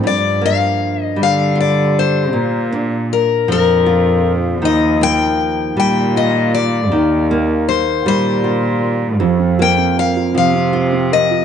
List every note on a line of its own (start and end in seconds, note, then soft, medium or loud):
0.00 2.29 G2 medium
0.00 0.95 G2 medium
0.00 1.16 F3 medium
0.00 0.11 C4 medium
0.00 0.11 D4 medium
0.00 0.11 A4 medium
0.07 0.45 D5 medium
0.41 2.72 A#3 soft
0.46 1.03 F5 medium
1.03 1.22 D#5 medium
1.16 2.35 D3 medium
1.16 2.28 G3 medium
1.23 1.60 F5 medium
1.55 3.86 F4 soft
1.60 1.98 D5 medium
1.99 2.70 C5 medium
2.33 4.57 A#2 medium
2.33 3.24 A#2 medium
2.72 4.58 D4 soft
3.13 3.51 A#4 medium
3.48 4.64 F2 medium
3.48 5.76 F3 medium
3.48 4.31 A#4 medium
3.86 4.65 F4 soft
4.62 5.53 D#2 medium
4.62 6.86 D#3 medium
4.62 5.03 D#5 medium
5.01 7.30 A#3 medium
5.01 5.78 G5 loud
5.77 6.92 A#2 medium
5.77 6.87 G3 medium
5.77 6.17 G5 medium
6.16 6.95 F4 soft
6.16 6.51 D#5 medium
6.55 7.26 D5 medium
6.91 7.82 D#2 medium
6.91 9.16 D#3 medium
7.31 9.59 A#3 medium
7.69 8.07 C5 medium
8.05 9.22 A#2 medium
8.05 9.16 G3 medium
8.05 8.89 C5 medium
8.44 10.73 F4 soft
9.20 11.45 F2 medium
9.20 10.12 F2 medium
9.20 10.34 F3 medium
9.40 9.76 C4 soft
9.59 11.45 A#3 soft
9.59 10.15 F4 soft
9.59 9.99 G5 medium
9.78 10.53 C4 medium
9.96 11.10 A#4 medium
9.96 10.36 F5 medium
10.16 10.72 F4 medium
10.35 11.45 C3 medium
10.35 11.45 F3 medium
10.35 11.13 F5 medium
10.55 10.91 C4 soft
10.73 11.45 F4 medium
10.73 11.30 F4 soft
10.93 11.45 C4 medium
11.12 11.45 A#4 medium
11.12 11.45 D#5 medium
11.31 11.45 F4 medium